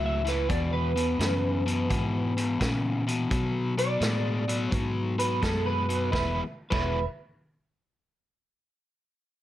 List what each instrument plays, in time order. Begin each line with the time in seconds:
Already playing: fingered electric bass C#2, overdriven electric guitar A2 F#3
0.06 clean electric guitar E5
0.25 overdriven electric guitar A2 E3, clean electric guitar B4, snare, closed hi-hat
0.49 overdriven electric guitar E2 B2, fingered electric bass E2, clean electric guitar D5, kick, closed hi-hat
0.73 clean electric guitar B4
0.96 overdriven electric guitar E2 B2, closed hi-hat
1.19 overdriven electric guitar E2 C#3, fingered electric bass F#2, snare, closed hi-hat
1.66 overdriven electric guitar E2 B2, closed hi-hat
1.90 overdriven electric guitar E2 B2, fingered electric bass G#2, kick, closed hi-hat
2.37 overdriven electric guitar E2 B2, closed hi-hat
2.60 overdriven electric guitar E2 C#3, fingered electric bass A#2, kick, snare, closed hi-hat
3.07 overdriven electric guitar E2 B2, closed hi-hat
3.30 overdriven electric guitar B2 F#3, fingered electric bass B2, kick, closed hi-hat
3.78 overdriven electric guitar B2 F#3, clean electric guitar D5, closed hi-hat
4.00 fingered electric bass A2, overdriven electric guitar B2 G#3, snare, closed hi-hat
4.48 overdriven electric guitar B2 F#3, closed hi-hat
4.71 fingered electric bass G#2, overdriven electric guitar B2 F#3, clean electric guitar B4, kick, closed hi-hat
5.18 overdriven electric guitar B2 F#3, clean electric guitar B4, closed hi-hat
5.42 fingered electric bass F#2, overdriven electric guitar B2 G#3, clean electric guitar A4, kick, snare, closed hi-hat
5.66 clean electric guitar B4
5.89 overdriven electric guitar B2 F#3, closed hi-hat
6.12 fingered electric bass E1, overdriven electric guitar E3 G#3 B3 E4, clean electric guitar B4, harmonica E5, kick, snare
6.70 fingered electric bass E1, overdriven electric guitar E3 G#3 B3 E4, harmonica A4 C#5 E5, clean electric guitar B4, kick, crash